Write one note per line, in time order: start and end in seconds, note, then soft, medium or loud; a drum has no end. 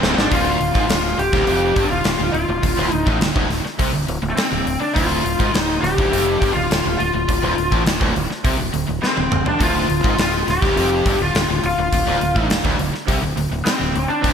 0.00 0.16 D1 medium
0.00 0.16 D2 loud
0.00 0.19 C4 medium
0.00 snare medium
0.17 0.30 G#1 medium
0.17 0.30 G#2 loud
0.17 0.32 D4 medium
0.17 snare medium
0.31 0.58 D1 medium
0.31 0.59 D2 medium
0.31 1.21 F4 medium
0.31 kick medium
0.31 open hi-hat medium
0.60 0.74 D1 medium
0.60 0.74 D2 medium
0.60 open hi-hat medium
0.75 0.88 G#1 medium
0.75 0.88 G#2 medium
0.75 kick medium
0.89 1.16 D1 medium
0.89 1.12 D2 medium
0.89 snare loud
0.89 open hi-hat medium
1.18 1.32 D1 medium
1.18 1.31 D2 medium
1.18 1.86 G4 medium
1.18 open hi-hat medium
1.32 1.46 D1 medium
1.32 1.46 D2 medium
1.32 kick loud
1.32 snare soft
1.47 1.74 F1 medium
1.47 1.75 F2 loud
1.47 open hi-hat medium
1.76 1.90 G1 medium
1.76 1.89 G2 medium
1.76 kick loud
1.76 open hi-hat medium
1.85 1.91 D4 medium
1.90 2.04 D1 medium
1.90 2.04 D2 medium
1.90 2.31 F4 medium
2.04 2.18 D1 medium
2.04 2.18 D2 medium
2.04 snare loud
2.04 open hi-hat medium
2.19 2.33 D1 medium
2.19 2.33 D2 medium
2.33 2.47 D1 medium
2.33 2.48 D2 medium
2.33 2.93 F4 medium
2.33 open hi-hat soft
2.48 2.62 D1 medium
2.48 2.62 D2 medium
2.63 2.77 D1 medium
2.63 2.77 D2 medium
2.63 kick medium
2.63 open hi-hat medium
2.78 2.91 D1 medium
2.78 2.91 D2 medium
2.92 3.06 D1 medium
2.92 3.06 D2 medium
2.92 3.17 D#4 medium
2.92 open hi-hat soft
3.06 3.20 A1 medium
3.06 3.20 A2 medium
3.06 kick medium
3.20 3.34 D1 medium
3.20 3.33 D2 medium
3.20 snare loud
3.20 open hi-hat medium
3.34 3.49 D1 medium
3.34 3.48 D2 medium
3.34 kick loud
3.49 3.63 D1 medium
3.49 3.63 D2 medium
3.49 snare soft
3.49 open hi-hat medium
3.64 muted distorted electric guitar stroke medium
3.64 muted overdriven electric guitar stroke medium
3.64 muted fingered electric bass stroke soft
3.64 snare soft
3.79 3.93 C2 medium
3.79 3.93 C3 loud
3.79 kick medium
3.79 open hi-hat medium
3.93 4.07 D1 medium
3.93 4.06 D2 medium
4.07 4.22 D1 medium
4.07 4.21 D2 medium
4.07 open hi-hat medium
4.22 4.36 D1 medium
4.22 4.36 D2 medium
4.30 4.36 A3 medium
4.36 4.82 C4 medium
4.36 muted fingered electric bass stroke soft
4.36 muted distorted electric guitar stroke medium
4.36 muted overdriven electric guitar stroke medium
4.36 snare loud
4.36 open hi-hat medium
4.52 4.65 D1 medium
4.52 4.66 D2 medium
4.66 4.80 D1 medium
4.66 4.80 D2 medium
4.66 open hi-hat medium
4.80 4.94 D4 medium
4.80 muted distorted electric guitar stroke medium
4.80 muted overdriven electric guitar stroke medium
4.80 muted fingered electric bass stroke soft
4.95 5.23 D1 medium
4.95 5.24 D2 medium
4.95 5.60 F4 medium
4.95 kick medium
4.95 open hi-hat medium
5.24 5.38 D1 medium
5.24 5.39 D2 medium
5.24 open hi-hat medium
5.39 5.53 G#1 loud
5.39 5.53 G#2 medium
5.39 kick medium
5.54 5.81 D1 medium
5.54 5.77 D2 medium
5.54 snare loud
5.54 open hi-hat medium
5.60 5.81 D#4 medium
5.81 5.96 D1 medium
5.81 5.97 D2 medium
5.81 6.53 G4 loud
5.81 open hi-hat medium
5.85 snare soft
5.98 6.11 D1 medium
5.98 6.11 D2 medium
5.98 kick loud
6.12 6.39 F1 medium
6.12 6.40 F2 loud
6.12 open hi-hat medium
6.42 6.55 G1 medium
6.42 6.55 G2 loud
6.42 kick medium
6.42 open hi-hat medium
6.54 6.69 D1 medium
6.54 6.70 D2 medium
6.54 6.97 F4 loud
6.70 6.83 D1 medium
6.70 6.84 D2 medium
6.70 snare loud
6.70 open hi-hat medium
6.85 6.98 D1 medium
6.85 6.99 D2 medium
6.98 7.13 D1 medium
6.98 7.13 D2 medium
6.98 7.81 F4 medium
6.98 open hi-hat soft
7.14 7.27 D1 medium
7.14 7.27 D2 medium
7.28 7.42 D1 medium
7.28 7.41 D2 medium
7.28 kick medium
7.28 open hi-hat medium
7.42 7.56 D1 medium
7.42 7.56 D2 medium
7.57 7.71 D1 medium
7.57 7.71 D2 medium
7.57 open hi-hat soft
7.71 7.85 A1 medium
7.71 7.85 A2 medium
7.71 kick medium
7.86 8.00 D1 medium
7.86 8.00 D2 medium
7.86 snare loud
7.86 open hi-hat medium
8.01 8.14 D1 medium
8.01 8.14 D2 medium
8.01 kick loud
8.16 8.29 D1 medium
8.16 8.29 D2 medium
8.16 open hi-hat soft
8.30 muted distorted electric guitar stroke medium
8.30 muted overdriven electric guitar stroke medium
8.30 muted fingered electric bass stroke soft
8.30 snare soft
8.45 8.58 C2 medium
8.45 8.58 C3 loud
8.45 kick loud
8.45 open hi-hat medium
8.59 8.72 D1 medium
8.59 8.72 D2 medium
8.73 8.87 D1 medium
8.73 8.87 D2 medium
8.73 open hi-hat medium
8.88 9.01 D1 medium
8.88 9.02 D2 medium
9.02 9.47 C4 medium
9.02 muted distorted electric guitar stroke medium
9.02 muted fingered electric bass stroke soft
9.02 muted overdriven electric guitar stroke medium
9.02 snare medium
9.17 9.31 D1 medium
9.17 9.30 D2 medium
9.17 high tom medium
9.32 9.45 D1 medium
9.32 9.45 D2 medium
9.32 mid tom medium
9.46 9.60 D4 medium
9.46 muted distorted electric guitar stroke medium
9.46 muted overdriven electric guitar stroke medium
9.46 muted fingered electric bass stroke soft
9.46 floor tom medium
9.60 9.87 D1 medium
9.60 9.88 D2 loud
9.60 10.20 F4 medium
9.60 kick medium
9.60 open hi-hat medium
9.89 10.03 D1 medium
9.89 10.03 D2 medium
9.89 open hi-hat medium
10.04 10.17 G#1 medium
10.04 10.17 G#2 medium
10.04 kick medium
10.18 10.45 D1 medium
10.18 10.41 D2 medium
10.18 10.49 F4 medium
10.18 snare loud
10.18 open hi-hat medium
10.47 10.61 D1 medium
10.47 10.62 D2 medium
10.47 11.22 G4 medium
10.47 snare soft
10.47 open hi-hat medium
10.62 10.75 D1 medium
10.62 10.76 D2 medium
10.62 kick loud
10.62 snare soft
10.76 11.03 F1 medium
10.76 11.05 F2 loud
10.76 open hi-hat medium
11.06 11.19 G1 medium
11.06 11.19 G2 loud
11.06 kick loud
11.06 open hi-hat medium
11.20 11.33 D1 medium
11.20 11.34 D2 medium
11.20 11.61 F4 medium
11.35 11.48 D1 medium
11.35 11.49 D2 medium
11.35 snare loud
11.35 open hi-hat medium
11.49 11.62 D1 medium
11.49 11.63 D2 medium
11.64 11.77 D1 medium
11.64 11.78 D2 medium
11.64 12.48 F4 medium
11.64 open hi-hat medium
11.78 11.91 D1 medium
11.78 11.92 D2 medium
11.92 12.06 D1 medium
11.92 12.05 D2 medium
11.92 kick medium
11.92 open hi-hat medium
12.07 12.20 D1 medium
12.07 12.20 D2 medium
12.21 12.35 D1 medium
12.21 12.36 D2 medium
12.21 open hi-hat medium
12.36 12.49 A1 loud
12.36 12.50 A2 medium
12.36 kick medium
12.50 12.63 D1 medium
12.50 12.63 D2 medium
12.50 snare loud
12.50 open hi-hat medium
12.64 12.78 D1 medium
12.64 12.78 D2 medium
12.64 kick loud
12.79 12.93 D1 medium
12.79 12.93 D2 medium
12.79 open hi-hat medium
12.93 muted fingered electric bass stroke soft
12.93 muted distorted electric guitar stroke medium
12.93 muted overdriven electric guitar stroke medium
12.93 snare soft
13.08 13.21 C2 loud
13.08 13.22 C3 loud
13.08 kick medium
13.08 open hi-hat medium
13.22 13.36 D1 medium
13.22 13.37 D2 medium
13.36 13.50 D1 medium
13.36 13.50 D2 medium
13.36 open hi-hat medium
13.51 13.65 D1 medium
13.51 13.64 D2 medium
13.65 14.06 C4 medium
13.65 muted overdriven electric guitar stroke medium
13.65 muted fingered electric bass stroke soft
13.65 muted distorted electric guitar stroke medium
13.65 snare loud
13.65 open hi-hat medium
13.80 13.94 D1 medium
13.80 13.94 D2 medium
13.95 14.09 D1 medium
13.95 14.09 D2 medium
13.95 open hi-hat soft
14.09 14.21 D4 loud
14.09 muted fingered electric bass stroke soft
14.09 muted distorted electric guitar stroke medium
14.09 muted overdriven electric guitar stroke medium
14.23 14.33 D1 medium
14.23 14.33 D2 loud
14.23 14.33 D4 loud
14.23 kick medium
14.23 open hi-hat medium